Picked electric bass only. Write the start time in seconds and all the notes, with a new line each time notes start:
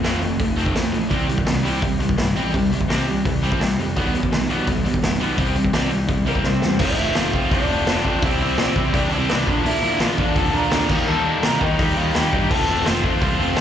0.03 F2
0.21 F1
0.40 F1
0.74 F2
0.93 A1
1.11 C2
1.28 C2
1.46 C2
1.63 C2
1.83 C2
1.99 C2
2.17 G1
2.35 A1
2.54 C2
2.70 C3
2.88 C3
3.07 C2
3.26 C2
3.61 C3
3.79 F2
3.97 B1
4.15 B1
4.33 B1
4.50 B1
4.68 B1
4.86 B1
5.02 F1
5.20 B1
5.38 C2
5.56 C3
5.73 C3
5.90 C2
6.09 C2
6.44 C3
6.63 E2
6.80 F1
6.98 F1
7.15 F1
7.52 C2
7.69 F1
7.87 F1
8.05 F2
8.23 C2
8.58 A#2
8.76 C3
8.94 C2
9.11 C2
9.30 C2
9.48 A#1
9.65 A#1
9.82 A#1
10.00 A#1
10.37 F1
10.54 A#1
10.71 D2
10.90 D#2
11.08 D#2
11.44 C3
11.61 D#3
11.79 D#2
11.97 D#2
12.15 D#2
12.33 G2
12.51 F1
12.69 F1
12.86 F1
13.22 C2
13.39 F1
13.57 F1